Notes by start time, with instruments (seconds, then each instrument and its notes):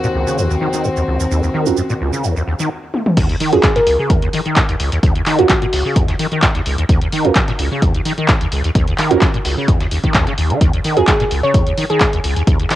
Already playing: string section D#2 D#3 C4 F#4
0.04 acid bass A#2, shaker
0.15 acid bass C#2
0.27 acid bass C#3, shaker
0.38 acid bass D#2, shaker
0.50 acid bass D#2, shaker
0.61 acid bass D#3
0.73 acid bass D#3, shaker
0.84 acid bass D#2, shaker
0.97 acid bass D#2, shaker
1.08 acid bass C#2
1.20 acid bass D#2, shaker
1.31 acid bass D#2, shaker
1.43 acid bass D#2, shaker
1.54 acid bass D#3
1.66 acid bass C#2, synth stab C#4 F4 F#4 A#4, shaker
1.77 acid bass F#2, shaker
1.90 acid bass A#2, shaker
2.01 acid bass C#2
2.13 acid bass C#3, shaker
2.24 acid bass D#2, shaker
2.36 acid bass D#2, shaker
2.47 acid bass D#2
2.59 acid bass D#3, shaker
2.94 high tom
3.06 mid tom
3.17 acid bass D#2, kick, closed hi-hat, crash
3.29 acid bass D#2, closed hi-hat
3.40 acid bass D#3, closed hi-hat, open hi-hat
3.53 acid bass C#2, synth stab C#4 F4 F#4 A#4, synth pluck G#4, closed hi-hat
3.63 acid bass F#2, synth pluck G#4, kick, snare, clap, closed hi-hat
3.76 acid bass A#2, synth pluck A#4, snare, closed hi-hat
3.87 acid bass C#2, closed hi-hat, open hi-hat
3.99 acid bass C#3
4.10 acid bass D#2, kick, closed hi-hat
4.22 acid bass D#2, closed hi-hat
4.33 acid bass D#3, closed hi-hat, open hi-hat
4.46 acid bass D#3, closed hi-hat
4.56 acid bass D#2, kick, snare, clap, closed hi-hat
4.69 acid bass D#2, closed hi-hat
4.80 acid bass C#2, closed hi-hat, open hi-hat
4.92 acid bass D#2, closed hi-hat
5.03 acid bass D#2, kick, closed hi-hat
5.15 acid bass D#2, closed hi-hat
5.26 acid bass D#3, clap, closed hi-hat, open hi-hat
5.39 acid bass C#2, synth stab C#4 F4 F#4 A#4, synth pluck F#4, closed hi-hat
5.49 acid bass F#2, kick, snare, clap, closed hi-hat
5.62 acid bass A#2, closed hi-hat
5.73 acid bass C#2, snare, open hi-hat
5.85 acid bass C#3
5.96 acid bass D#2, kick, closed hi-hat
6.08 acid bass D#2, snare, closed hi-hat
6.19 acid bass D#3, closed hi-hat, open hi-hat
6.32 acid bass D#3, closed hi-hat
6.42 acid bass D#2, kick, snare, clap, closed hi-hat
6.55 acid bass D#2, snare, closed hi-hat
6.66 acid bass C#2, closed hi-hat, open hi-hat
6.78 acid bass D#2, closed hi-hat
6.89 acid bass D#2, kick, closed hi-hat
7.01 acid bass D#2, closed hi-hat
7.12 acid bass D#3, closed hi-hat, open hi-hat
7.25 acid bass C#2, synth stab C#4 F4 F#4 A#4, closed hi-hat
7.35 acid bass F#2, kick, snare, clap, closed hi-hat
7.48 acid bass A#2, snare, closed hi-hat
7.59 acid bass C#2, closed hi-hat, open hi-hat
7.71 acid bass C#3
7.82 acid bass D#2, kick, closed hi-hat
7.95 acid bass D#2, closed hi-hat
8.05 acid bass D#3, closed hi-hat, open hi-hat
8.18 acid bass D#3, closed hi-hat
8.28 acid bass D#2, kick, snare, clap, closed hi-hat
8.41 acid bass D#2, closed hi-hat
8.52 acid bass C#2, closed hi-hat, open hi-hat
8.64 acid bass D#2, closed hi-hat
8.75 acid bass D#2, kick, closed hi-hat
8.88 acid bass D#2, closed hi-hat
8.98 acid bass D#3, clap, closed hi-hat, open hi-hat
9.11 acid bass C#2, synth stab C#4 F4 F#4 A#4, closed hi-hat
9.21 acid bass F#2, kick, snare, clap, closed hi-hat
9.34 acid bass A#2, closed hi-hat
9.45 acid bass C#2, snare, open hi-hat
9.57 acid bass C#3
9.68 acid bass D#2, kick, closed hi-hat
9.81 acid bass D#2, snare, closed hi-hat
9.91 acid bass D#2, closed hi-hat, open hi-hat
10.04 acid bass D#3, kick, closed hi-hat
10.14 acid bass D#2, kick, snare, clap, closed hi-hat
10.27 acid bass C#3, snare, closed hi-hat
10.38 acid bass D#2, closed hi-hat, open hi-hat
10.50 acid bass D#3, closed hi-hat
10.61 acid bass D#2, kick, closed hi-hat
10.73 acid bass D#2, closed hi-hat
10.84 acid bass D#3, closed hi-hat, open hi-hat
10.97 acid bass C#2, synth stab C#4 F4 F#4 A#4, synth pluck G#4, closed hi-hat
11.07 acid bass F#2, synth pluck G#4, kick, snare, clap, closed hi-hat
11.20 acid bass A#2, snare, closed hi-hat
11.31 acid bass C#2, closed hi-hat, open hi-hat
11.43 acid bass C#3, synth pluck C#5
11.54 acid bass D#2, kick, closed hi-hat
11.67 acid bass D#2, closed hi-hat
11.77 acid bass D#3, closed hi-hat, open hi-hat
11.90 acid bass D#3, synth pluck G#4, closed hi-hat
12.00 acid bass D#2, kick, snare, clap, closed hi-hat
12.13 acid bass D#2, closed hi-hat
12.24 acid bass C#2, closed hi-hat, open hi-hat
12.36 acid bass D#2, closed hi-hat
12.47 acid bass D#2, kick, closed hi-hat
12.60 acid bass D#2, closed hi-hat
12.70 acid bass D#3, clap, closed hi-hat, open hi-hat